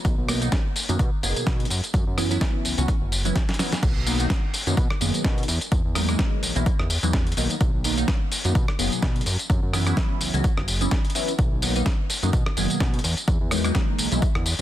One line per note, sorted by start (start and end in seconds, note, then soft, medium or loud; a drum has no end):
0.05 0.16 B1 loud
0.05 kick loud
0.05 closed hi-hat medium
0.05 tambourine soft
0.18 0.49 B1 medium
0.28 0.40 D#3 medium
0.28 0.40 F#3 medium
0.28 0.40 A#3 medium
0.28 0.40 B3 medium
0.28 0.40 D#4 medium
0.28 cross-stick medium
0.28 open hi-hat loud
0.28 tambourine medium
0.41 0.51 D#3 medium
0.41 0.51 F#3 medium
0.41 0.51 A#3 medium
0.41 0.51 B3 medium
0.41 0.51 D#4 medium
0.41 closed hi-hat medium
0.41 tambourine soft
0.52 kick loud
0.52 snare loud
0.52 closed hi-hat medium
0.52 tambourine soft
0.76 open hi-hat medium
0.76 tambourine medium
0.89 0.98 F#2 medium
0.89 0.98 D#3 medium
0.89 0.98 F#3 medium
0.89 0.98 A#3 medium
0.89 0.98 B3 medium
0.89 0.99 D#4 medium
0.89 closed hi-hat medium
0.89 tambourine soft
0.99 1.10 B2 loud
0.99 kick loud
0.99 closed hi-hat medium
0.99 tambourine soft
1.23 1.34 F#1 medium
1.23 1.69 D#3 medium
1.23 1.69 F#3 medium
1.23 1.69 A#3 medium
1.23 1.69 B3 medium
1.23 1.69 G#4 medium
1.23 open hi-hat loud
1.23 tambourine medium
1.36 1.45 B2 soft
1.36 closed hi-hat medium
1.36 tambourine soft
1.47 1.66 B2 loud
1.47 kick loud
1.47 snare loud
1.47 closed hi-hat medium
1.47 tambourine soft
1.60 closed hi-hat medium
1.65 closed hi-hat medium
1.70 1.81 F#2 loud
1.70 open hi-hat medium
1.70 tambourine medium
1.84 closed hi-hat medium
1.84 tambourine soft
1.94 2.05 F#2 loud
1.94 kick loud
1.94 closed hi-hat medium
2.07 2.38 F#2 medium
2.17 2.29 E3 medium
2.17 2.29 F#3 medium
2.17 2.29 B3 medium
2.17 2.29 C#4 medium
2.17 2.29 E4 medium
2.17 cross-stick medium
2.17 open hi-hat loud
2.17 tambourine medium
2.30 2.75 E3 medium
2.30 2.75 F#3 medium
2.30 2.75 B3 medium
2.30 2.75 C#4 medium
2.30 2.75 E4 loud
2.30 closed hi-hat medium
2.30 tambourine soft
2.41 kick loud
2.41 snare loud
2.41 closed hi-hat medium
2.41 tambourine soft
2.65 2.75 C#2 soft
2.65 open hi-hat medium
2.65 tambourine medium
2.78 2.87 C#2 medium
2.78 2.94 E3 medium
2.78 2.94 F#3 medium
2.78 2.94 B3 medium
2.78 2.94 C#4 medium
2.78 2.94 F#4 loud
2.78 closed hi-hat medium
2.78 tambourine soft
2.88 kick loud
2.88 closed hi-hat medium
2.88 tambourine soft
3.02 3.33 F#1 medium
3.12 open hi-hat loud
3.12 tambourine medium
3.25 3.34 E3 medium
3.25 3.34 F#3 medium
3.25 3.35 B3 medium
3.25 3.35 C#4 medium
3.25 3.35 E4 medium
3.25 closed hi-hat medium
3.25 tambourine soft
3.36 kick loud
3.36 snare medium
3.36 closed hi-hat medium
3.36 tambourine soft
3.49 snare medium
3.49 closed hi-hat soft
3.54 closed hi-hat medium
3.59 3.77 E3 medium
3.59 3.77 F#3 medium
3.59 3.77 B3 medium
3.59 3.77 C#4 medium
3.59 3.77 E4 loud
3.59 snare medium
3.59 open hi-hat medium
3.59 tambourine medium
3.72 snare medium
3.72 closed hi-hat medium
3.72 tambourine soft
3.83 3.94 B1 loud
3.83 kick loud
3.83 closed hi-hat medium
3.83 tambourine soft
3.83 crash loud
3.96 4.27 B1 medium
4.06 4.17 D#3 medium
4.06 4.18 F#3 medium
4.06 4.18 A#3 medium
4.06 4.18 B3 medium
4.06 4.18 D#4 medium
4.06 open hi-hat loud
4.06 tambourine medium
4.19 4.29 D#3 medium
4.19 4.29 F#3 medium
4.19 4.29 A#3 medium
4.19 4.29 B3 medium
4.19 4.29 D#4 medium
4.19 closed hi-hat medium
4.19 tambourine soft
4.30 kick loud
4.30 snare loud
4.30 closed hi-hat medium
4.30 tambourine soft
4.54 open hi-hat medium
4.54 tambourine medium
4.67 4.75 F#2 medium
4.67 4.76 D#3 medium
4.67 4.76 F#3 medium
4.67 4.76 A#3 medium
4.67 4.76 B3 medium
4.67 4.76 D#4 medium
4.67 closed hi-hat medium
4.67 tambourine soft
4.77 4.88 B2 loud
4.77 kick loud
4.77 closed hi-hat medium
4.90 cross-stick medium
5.01 5.12 F#1 medium
5.01 5.47 D#3 medium
5.01 5.47 F#3 medium
5.01 5.47 A#3 medium
5.01 5.47 B3 medium
5.01 5.47 G#4 medium
5.01 open hi-hat loud
5.01 tambourine medium
5.14 5.23 B2 soft
5.14 closed hi-hat medium
5.14 tambourine soft
5.24 5.44 B2 loud
5.24 kick loud
5.24 snare loud
5.24 closed hi-hat medium
5.24 tambourine soft
5.38 closed hi-hat soft
5.43 closed hi-hat medium
5.48 5.59 E2 loud
5.48 open hi-hat medium
5.48 tambourine medium
5.61 closed hi-hat medium
5.61 tambourine soft
5.72 5.83 E2 loud
5.72 kick loud
5.72 closed hi-hat medium
5.72 tambourine soft
5.85 6.16 E2 medium
5.95 6.06 E3 medium
5.95 6.07 F#3 medium
5.95 6.07 G#3 medium
5.95 6.07 A#3 medium
5.95 6.07 D#4 medium
5.95 cross-stick medium
5.95 open hi-hat loud
5.95 tambourine medium
6.08 6.53 E3 loud
6.08 6.53 F#3 medium
6.08 6.53 G#3 medium
6.08 6.53 A#3 medium
6.08 6.53 D#4 loud
6.08 cross-stick medium
6.08 closed hi-hat medium
6.08 tambourine soft
6.19 kick loud
6.19 snare loud
6.19 closed hi-hat medium
6.43 6.53 B1 soft
6.43 open hi-hat loud
6.43 tambourine medium
6.56 6.64 B1 medium
6.56 6.72 E3 medium
6.56 6.72 F#3 medium
6.56 6.72 G#3 medium
6.56 6.72 A#3 medium
6.56 6.72 E4 loud
6.56 closed hi-hat medium
6.56 tambourine soft
6.66 kick loud
6.66 closed hi-hat medium
6.66 tambourine soft
6.79 6.98 E2 medium
6.79 cross-stick medium
6.90 open hi-hat loud
6.90 tambourine medium
7.03 7.34 E2 medium
7.03 7.12 E3 medium
7.03 7.12 F#3 medium
7.03 7.13 G#3 medium
7.03 7.13 A#3 medium
7.03 7.13 D#4 loud
7.03 closed hi-hat medium
7.03 tambourine soft
7.13 kick loud
7.13 snare loud
7.13 closed hi-hat medium
7.27 closed hi-hat soft
7.32 closed hi-hat medium
7.37 7.48 B1 loud
7.37 7.55 D#3 medium
7.37 7.55 F#3 medium
7.37 7.55 A#3 medium
7.37 7.55 B3 medium
7.37 7.55 D#4 loud
7.37 open hi-hat loud
7.37 tambourine medium
7.50 closed hi-hat medium
7.50 tambourine soft
7.61 7.72 B1 loud
7.61 kick loud
7.61 closed hi-hat medium
7.61 tambourine soft
7.74 8.05 B1 medium
7.84 7.95 D#3 medium
7.84 7.96 F#3 medium
7.84 7.96 A#3 medium
7.84 7.96 B3 medium
7.84 7.96 D#4 medium
7.84 open hi-hat loud
7.84 tambourine medium
7.97 8.07 D#3 medium
7.97 8.07 F#3 medium
7.97 8.07 A#3 medium
7.97 8.07 B3 medium
7.97 8.07 D#4 medium
7.97 closed hi-hat soft
7.97 tambourine soft
8.08 kick loud
8.08 snare loud
8.08 closed hi-hat medium
8.08 tambourine soft
8.32 open hi-hat loud
8.32 tambourine medium
8.44 8.53 F#2 medium
8.44 8.54 D#3 medium
8.44 8.54 F#3 medium
8.44 8.54 A#3 medium
8.44 8.54 B3 medium
8.44 8.54 D#4 medium
8.44 closed hi-hat medium
8.44 tambourine soft
8.55 8.66 B2 loud
8.55 kick loud
8.55 closed hi-hat medium
8.55 tambourine soft
8.68 cross-stick medium
8.79 8.90 F#1 medium
8.79 9.25 D#3 medium
8.79 9.25 F#3 medium
8.79 9.25 A#3 medium
8.79 9.25 B3 medium
8.79 9.25 G#4 medium
8.79 open hi-hat loud
8.79 tambourine medium
8.92 9.00 B2 soft
8.92 closed hi-hat medium
8.92 tambourine soft
9.02 9.22 B2 loud
9.02 kick loud
9.02 snare loud
9.02 closed hi-hat medium
9.16 closed hi-hat soft
9.21 closed hi-hat medium
9.26 9.37 F#2 loud
9.26 open hi-hat loud
9.26 tambourine medium
9.39 closed hi-hat medium
9.39 tambourine soft
9.50 9.61 F#2 loud
9.50 kick loud
9.50 closed hi-hat medium
9.50 tambourine soft
9.63 9.94 F#2 medium
9.73 9.84 E3 medium
9.73 9.85 F#3 medium
9.73 9.85 B3 medium
9.73 9.85 C#4 medium
9.73 9.85 E4 medium
9.73 cross-stick medium
9.73 open hi-hat loud
9.73 tambourine medium
9.86 10.30 E3 medium
9.86 10.31 F#3 medium
9.86 10.31 B3 medium
9.86 10.31 C#4 medium
9.86 10.31 E4 loud
9.86 cross-stick medium
9.86 closed hi-hat soft
9.86 tambourine soft
9.97 kick loud
9.97 snare loud
9.97 closed hi-hat medium
9.97 tambourine soft
10.21 10.31 C#2 soft
10.21 open hi-hat medium
10.21 tambourine medium
10.34 10.42 C#2 medium
10.34 10.50 E3 medium
10.34 10.50 F#3 medium
10.34 10.50 B3 medium
10.34 10.50 C#4 medium
10.34 10.50 F#4 medium
10.34 closed hi-hat soft
10.34 tambourine soft
10.44 kick loud
10.44 closed hi-hat medium
10.44 tambourine soft
10.57 10.88 F#1 medium
10.57 cross-stick medium
10.68 open hi-hat loud
10.68 tambourine medium
10.81 10.90 E3 medium
10.81 10.90 F#3 medium
10.81 10.90 B3 medium
10.81 10.91 C#4 medium
10.81 10.91 E4 medium
10.81 closed hi-hat soft
10.81 tambourine soft
10.91 kick loud
10.91 snare loud
10.91 closed hi-hat medium
10.91 tambourine soft
11.05 closed hi-hat soft
11.10 closed hi-hat medium
11.15 11.33 E3 medium
11.15 11.33 F#3 medium
11.15 11.33 B3 medium
11.15 11.33 C#4 medium
11.15 11.33 E4 loud
11.15 open hi-hat medium
11.15 tambourine medium
11.28 closed hi-hat medium
11.28 tambourine soft
11.39 11.50 B1 loud
11.39 kick loud
11.39 closed hi-hat medium
11.39 tambourine soft
11.52 11.83 B1 medium
11.62 11.73 D#3 medium
11.62 11.74 F#3 medium
11.62 11.74 A#3 medium
11.62 11.74 B3 medium
11.62 11.74 D#4 loud
11.62 open hi-hat loud
11.62 tambourine medium
11.75 11.85 D#3 medium
11.75 11.85 F#3 medium
11.75 11.85 A#3 medium
11.75 11.85 B3 medium
11.75 11.85 D#4 medium
11.75 closed hi-hat medium
11.75 tambourine soft
11.86 kick loud
11.86 snare loud
11.86 closed hi-hat medium
12.10 open hi-hat medium
12.10 tambourine medium
12.23 12.31 F#2 medium
12.23 12.32 D#3 medium
12.23 12.32 F#3 medium
12.23 12.32 A#3 medium
12.23 12.32 B3 medium
12.23 12.32 D#4 medium
12.23 closed hi-hat medium
12.23 tambourine soft
12.33 12.44 B2 medium
12.33 kick loud
12.33 closed hi-hat medium
12.33 tambourine soft
12.46 cross-stick medium
12.57 12.68 F#1 medium
12.57 13.03 D#3 medium
12.57 13.03 F#3 medium
12.57 13.03 A#3 medium
12.57 13.03 B3 medium
12.57 13.03 G#4 medium
12.57 open hi-hat loud
12.57 tambourine medium
12.70 12.78 B2 soft
12.70 closed hi-hat medium
12.70 tambourine soft
12.80 13.00 B2 loud
12.80 kick loud
12.80 snare loud
12.80 closed hi-hat medium
12.94 closed hi-hat soft
12.99 closed hi-hat medium
13.04 13.15 E2 loud
13.04 open hi-hat loud
13.04 tambourine medium
13.17 closed hi-hat medium
13.17 tambourine soft
13.28 13.39 E2 loud
13.28 kick loud
13.28 closed hi-hat medium
13.41 13.72 E2 medium
13.51 13.62 E3 medium
13.51 13.63 F#3 medium
13.51 13.63 G#3 medium
13.51 13.63 A#3 medium
13.51 13.63 D#4 loud
13.51 cross-stick medium
13.51 open hi-hat loud
13.51 tambourine medium
13.64 14.08 E3 medium
13.64 14.09 F#3 medium
13.64 14.09 G#3 medium
13.64 14.09 A#3 medium
13.64 14.09 D#4 loud
13.64 cross-stick medium
13.64 closed hi-hat medium
13.64 tambourine soft
13.75 kick loud
13.75 snare loud
13.75 closed hi-hat medium
13.75 tambourine soft
13.99 14.09 B1 soft
13.99 open hi-hat medium
13.99 tambourine medium
14.12 14.20 B1 medium
14.12 14.28 E3 medium
14.12 14.28 F#3 medium
14.12 14.28 G#3 medium
14.12 14.28 A#3 medium
14.12 14.28 E4 medium
14.12 closed hi-hat medium
14.12 tambourine soft
14.22 kick loud
14.22 closed hi-hat medium
14.22 tambourine soft
14.35 14.54 E2 medium
14.35 cross-stick medium
14.46 open hi-hat loud
14.46 tambourine medium